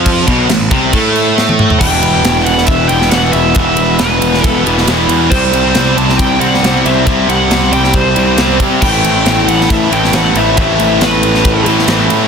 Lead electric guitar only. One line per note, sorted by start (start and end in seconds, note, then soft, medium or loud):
1.79 2.42 G5 loud
2.45 2.67 F#5 loud
2.67 2.88 E5 loud
2.89 3.10 G5 medium
3.11 3.32 F#5 loud
3.33 3.54 E5 medium
3.55 4.01 E5 loud
3.99 4.46 B4 medium
4.46 4.61 A4 medium
5.30 5.99 C5 loud
5.97 6.18 A5 loud
6.18 6.40 G5 loud
6.40 6.86 F#5 loud
6.85 7.05 E5 medium
7.06 7.29 E5 loud
7.29 7.73 F#5 loud
7.73 7.95 G5 medium
7.95 8.56 C5 medium
8.82 9.43 G5 loud
9.48 9.70 F#5 loud
9.71 9.93 E5 loud
9.93 10.14 G5 loud
10.15 10.37 F#5 loud
10.37 10.58 E5 medium
10.59 11.03 E5 loud
11.03 11.64 B4 medium